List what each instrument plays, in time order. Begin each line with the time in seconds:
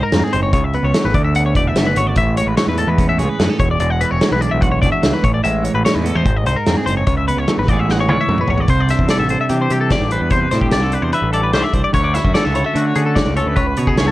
Already playing: clean electric guitar G#2 D#4
0.03 clean electric guitar A#4
0.12 picked electric bass F2, clean electric guitar C4, snare, closed hi-hat
0.24 clean electric guitar G#4
0.33 picked electric bass F#1, clean electric guitar D#4 C5, closed hi-hat
0.43 clean electric guitar C#5
0.53 picked electric bass C#2, clean electric guitar C#3 C#5, kick, closed hi-hat
0.64 clean electric guitar E5
0.73 clean electric guitar B3 B4, closed hi-hat
0.83 picked electric bass C#2, clean electric guitar C#5
0.94 clean electric guitar E3, snare, closed hi-hat
1.05 picked electric bass G#1, clean electric guitar B4
1.14 picked electric bass D2, clean electric guitar D3 D5, kick, closed hi-hat
1.25 clean electric guitar E5
1.35 clean electric guitar B3 F#5, closed hi-hat
1.46 clean electric guitar C#5
1.55 picked electric bass E1, clean electric guitar A3 D5, kick, closed hi-hat
1.68 clean electric guitar E5
1.75 picked electric bass F#1, clean electric guitar B3, snare, closed hi-hat
1.87 clean electric guitar B4
1.96 picked electric bass G#1, clean electric guitar F#4 C#5, closed hi-hat
2.07 clean electric guitar D5
2.16 picked electric bass A1, clean electric guitar A2 E5, kick, closed hi-hat
2.37 clean electric guitar G#3 C#5, closed hi-hat
2.46 picked electric bass A1, clean electric guitar B4
2.57 clean electric guitar E3 C#5, snare, closed hi-hat
2.68 picked electric bass E2, clean electric guitar B4
2.78 clean electric guitar G#3 A4, closed hi-hat
2.87 picked electric bass E2, clean electric guitar B4
2.99 clean electric guitar C#4, kick, closed hi-hat
3.09 clean electric guitar E5
3.19 picked electric bass C#2, clean electric guitar G#4 C#5, closed hi-hat
3.29 clean electric guitar B4
3.40 picked electric bass F#2, clean electric guitar B3, snare, closed hi-hat
3.50 clean electric guitar C#4 A4
3.60 picked electric bass E1, clean electric guitar E2 C#5, kick, closed hi-hat
3.71 clean electric guitar D5
3.80 picked electric bass E1, clean electric guitar G#3 D5, closed hi-hat
3.90 clean electric guitar F#5
4.01 clean electric guitar E3 B4, closed hi-hat
4.11 picked electric bass E1, clean electric guitar C#5
4.21 clean electric guitar G#3, snare, closed hi-hat
4.32 picked electric bass B1, clean electric guitar B4
4.41 clean electric guitar D4 D5, closed hi-hat
4.51 picked electric bass B1, clean electric guitar E5
4.61 clean electric guitar F#4 F#5, kick, closed hi-hat
4.72 clean electric guitar C#5
4.82 picked electric bass G#1, clean electric guitar D4 D5, kick, closed hi-hat
4.92 clean electric guitar E5
5.02 picked electric bass C#2, clean electric guitar E3, snare, closed hi-hat
5.13 clean electric guitar B4
5.22 picked electric bass A1, clean electric guitar A2 C#5, kick, closed hi-hat
5.34 clean electric guitar D5
5.44 picked electric bass A1, clean electric guitar G#3 E5, closed hi-hat
5.62 clean electric guitar E3 C#5, closed hi-hat
5.74 picked electric bass A1, clean electric guitar B4
5.85 clean electric guitar G#3 C#5, snare, closed hi-hat
5.95 picked electric bass E2, clean electric guitar B4
6.04 clean electric guitar B3 A4, closed hi-hat
6.15 picked electric bass E2, clean electric guitar C#4 C5
6.26 picked electric bass G#1, clean electric guitar G#2, kick, closed hi-hat
6.37 clean electric guitar D#5
6.46 picked electric bass C2, clean electric guitar D#4 C5, closed hi-hat
6.56 clean electric guitar A#4
6.66 picked electric bass F2, clean electric guitar C4, snare, closed hi-hat
6.77 clean electric guitar G#4
6.86 picked electric bass F#1, clean electric guitar D#4 C5, closed hi-hat
6.97 clean electric guitar C#5
7.06 picked electric bass C#2, clean electric guitar C#3 C#5, kick, closed hi-hat
7.17 clean electric guitar E5
7.28 clean electric guitar B3 B4, closed hi-hat
7.36 picked electric bass C#2, clean electric guitar C#5
7.47 clean electric guitar E3, snare, closed hi-hat
7.57 picked electric bass G#1, clean electric guitar B4
7.68 picked electric bass A1, clean electric guitar A2 E3 G#3 B3 D5, kick, closed hi-hat
7.72 clean electric guitar G#4
7.79 clean electric guitar E5
7.89 clean electric guitar G#3 F#5, snare
8.00 clean electric guitar C#5
8.08 picked electric bass C#2, clean electric guitar E3 C#5 D5, high tom
8.20 clean electric guitar E5
8.28 picked electric bass F#2, clean electric guitar G#3, mid tom
8.38 clean electric guitar B4, mid tom
8.47 picked electric bass G#1, clean electric guitar B3 C#5, floor tom
8.58 clean electric guitar D5, floor tom
8.68 picked electric bass C2, clean electric guitar C3 C5, kick, closed hi-hat
8.80 clean electric guitar D5
8.89 clean electric guitar D4 E5, snare, closed hi-hat
8.99 picked electric bass E2, kick
9.09 clean electric guitar G3 A4 D5, snare, closed hi-hat
9.19 picked electric bass A1, clean electric guitar E5
9.29 clean electric guitar D4 C5, closed hi-hat
9.41 clean electric guitar E5
9.49 picked electric bass C3, clean electric guitar E3 G4, closed hi-hat
9.62 clean electric guitar C5
9.70 picked electric bass C3, clean electric guitar G3 G4, closed hi-hat
9.81 clean electric guitar A4
9.90 clean electric guitar D4 D5, kick, snare, closed hi-hat
10.00 picked electric bass A1
10.11 clean electric guitar G3 B4 C5, closed hi-hat
10.21 picked electric bass E2, clean electric guitar B4
10.30 clean electric guitar C3 C5, kick, closed hi-hat
10.40 clean electric guitar B4
10.51 picked electric bass A2, clean electric guitar D4 C5, snare, closed hi-hat
10.61 clean electric guitar G4, kick
10.71 picked electric bass C2, clean electric guitar G3 D5, snare, closed hi-hat
10.82 clean electric guitar A4
10.92 clean electric guitar D4 B4, closed hi-hat
11.02 picked electric bass E2, clean electric guitar C5
11.13 clean electric guitar E3 B4 E5, closed hi-hat
11.22 picked electric bass A1
11.33 clean electric guitar G3 A4 D5, closed hi-hat
11.44 clean electric guitar B4
11.53 picked electric bass C2, clean electric guitar D4 C5, snare, closed hi-hat
11.64 clean electric guitar E5
11.73 picked electric bass C2, clean electric guitar G3 C5, kick, closed hi-hat
11.84 clean electric guitar D5
11.93 picked electric bass D2, clean electric guitar D3 C#5, kick, closed hi-hat
12.04 clean electric guitar D5
12.14 clean electric guitar E4 E5, snare, closed hi-hat
12.24 picked electric bass F#2, clean electric guitar F#4, kick
12.35 clean electric guitar B3 A4 D5, snare, closed hi-hat
12.45 picked electric bass C#2, clean electric guitar C#4 E5
12.54 clean electric guitar E4 C#5, closed hi-hat
12.64 clean electric guitar F#4 E5
12.74 picked electric bass D3, clean electric guitar A3 F#4, closed hi-hat
12.86 clean electric guitar C#5
12.95 picked electric bass D3, clean electric guitar C#4 G#4, closed hi-hat
13.06 clean electric guitar A4
13.16 clean electric guitar C#4 D5, kick, snare, closed hi-hat
13.26 picked electric bass C#2
13.36 clean electric guitar C#4 A4 C#5, closed hi-hat
13.46 picked electric bass D2, clean electric guitar B4
13.56 picked electric bass C#2, clean electric guitar C#3 B4 C#5, kick, closed hi-hat
13.67 clean electric guitar B4
13.76 picked electric bass B2, clean electric guitar B3 C#5, closed hi-hat
13.87 clean electric guitar C#4 G#4, kick
13.96 picked electric bass C#2, clean electric guitar B3 C#5, snare, closed hi-hat
14.08 clean electric guitar A4